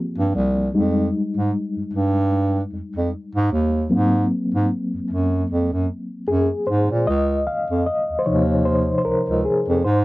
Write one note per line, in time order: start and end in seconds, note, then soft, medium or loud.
0.00 0.76 F3 soft
0.00 0.77 A#3 soft
0.00 0.77 C4 soft
0.18 0.33 G2 medium
0.35 0.69 C2 medium
0.74 1.08 F2 medium
0.74 1.89 G3 medium
0.74 1.89 G#3 soft
0.74 1.89 D#4 medium
1.37 1.51 G#2 medium
1.77 1.83 G2 soft
1.93 2.61 G2 medium
2.72 2.81 F2 soft
2.96 3.10 F2 medium
3.35 3.49 G#2 medium
3.52 3.86 D#2 medium
3.90 4.25 G#2 medium
3.90 4.45 F#3 soft
3.90 4.46 A#3 soft
3.90 4.46 C4 soft
4.54 4.68 G#2 medium
4.94 5.00 F#2 soft
5.10 5.44 F#2 medium
5.50 5.69 F2 medium
5.73 5.87 F#2 medium
6.28 6.48 F#2 medium
6.28 6.65 G#4 medium
6.67 6.88 G#2 medium
6.67 6.85 C5 medium
6.91 7.05 A#2 medium
7.07 7.41 C#2 medium
7.07 7.48 D#5 loud
7.47 7.65 F5 medium
7.70 7.84 F2 medium
7.86 8.21 D#5 medium
8.10 8.17 D#2 soft
8.19 8.25 C5 medium
8.26 8.94 D#2 medium
8.26 9.80 C3 soft
8.26 9.80 F3 soft
8.26 9.81 D#4 medium
8.26 8.67 C#5 medium
8.65 8.97 C5 medium
8.98 9.04 C5 medium
9.05 9.15 C#2 soft
9.05 9.46 A#4 medium
9.29 9.43 C#2 medium
9.45 9.86 G#4 medium
9.68 9.82 F2 medium
9.84 10.05 G#2 medium
9.84 10.05 C5 medium